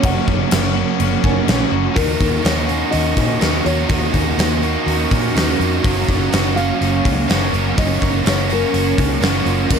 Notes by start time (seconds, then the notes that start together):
Already playing: F#2 C#3 F#3 A#3 C#4 F#4
0.02 F#1 F#3 A#3 C#4 F#4 F#5, kick, crash
0.27 F#1 A#3 C#4 F#4, kick
0.51 F#1 F#3 A#3 C#4 F#4, snare, crash
0.74 A#3 C#4 F#4
0.99 F#1 F#3 A#3 C#4 F#4, crash
1.23 F#1 F#3 A#3 C#4 F#4, kick
1.46 A#1 F#3 A#3 C#4 F#4, snare, crash
1.72 F#1 A#3 C#4 F#4
1.95 D#2 D#3 A#3 D#4 F#4 A#4, kick, open hi-hat
2.19 D#2 A#3 C#4 D#4 F#4, kick, open hi-hat
2.44 D#2 D#3 A#3 D#4 F#4 C#5, snare, open hi-hat
2.68 A#3 C#4 D#4 F#4, open hi-hat
2.91 D#2 D#3 A#3 D#4 F#4 D#5, open hi-hat
3.17 A#2 C#4, kick, open hi-hat
3.40 D#2 D#3 A#3 D#4 F#4, snare, open hi-hat
3.64 D#2 A#3 D#4 F#4 C#5, open hi-hat
3.89 D#2 D#3 A#3 D#4 F#4, kick, open hi-hat
4.12 D#2 A#3 C#4 D#4 F#4, kick, open hi-hat
4.37 D#2 D#3 A#3 D#4 F#4, snare, open hi-hat
4.62 A#3 C#4 D#4 F#4, open hi-hat
4.86 D#2 D#3 A#3 D#4 F#4, open hi-hat
5.11 A#2 C#4, kick, open hi-hat
5.35 D#2 D#3 A#3 D#4 F#4, snare, open hi-hat
5.58 F2 A#3 D#4 F#4, open hi-hat
5.82 F#1 F#2 C#3 F#3 A#3 C#4 F#4, kick, open hi-hat
6.07 F#1 F#3 A#3 C#4 F#4, kick, open hi-hat
6.32 F#1 F#3 A#3 C#4 F#4, snare, open hi-hat
6.56 F#3 A#3 C#4 F#4 F5, open hi-hat
6.80 F#1 F#3 A#3 C#4 F#4, open hi-hat
7.05 C#2 C#4, kick, open hi-hat
7.29 F#1 F#3 A#3 C#4 F#4, snare, open hi-hat
7.52 F#1 F#3 A#3 C#4 F#4, open hi-hat
7.76 F#1 F#2 C#3 F#3 A#3 C#4 F#4 D#5, kick, open hi-hat
8.00 F#1 F#3 A#3 C#4 F#4, kick, open hi-hat
8.25 F#1 F#3 A#3 C#4 F#4 C#5, snare, open hi-hat
8.49 F#3 A#3 C#4 F#4 A#4, open hi-hat
8.73 F#1 F#3 A#3 C#4 F#4, open hi-hat
8.98 C#2 C#4, kick, open hi-hat
9.21 F#1 F#3 A#3 C#4 F#4, snare, open hi-hat
9.45 F#1 F#3 A#3 C#4 F4 F#4, open hi-hat
9.69 D#2 D#3 A#3 D#4 F#4 A#4, kick, crash